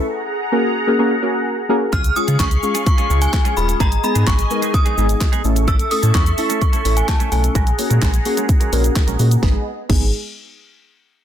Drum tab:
CC |----------------|----------------|----------------|----------------|
HH |----------------|xx-xxx-xxx-xxx-x|xx-xxx-xxx-xxx-x|xxoxxxoxxxoxxxox|
SH |----------------|xxxxxxxxxxxxxxxx|xxxxxxxxxxxxxxxx|xxxxxxxxxxxxxxxx|
CP |----------------|----x-------x---|----x-------x---|----x-------x---|
SD |----------------|----o-------o---|----o-------o---|----o-------o---|
BD |----------------|o---o---o---o---|o---o---o---o---|o---o---o---o---|

CC |----------------|----x-----------|
HH |xxoxxxoxxxoxxxox|----------------|
SH |xxxxxxxxxxxxxxxx|----------------|
CP |----x-------x---|----------------|
SD |----o-------o---|o---------------|
BD |o---o---o---o---|o---o-----------|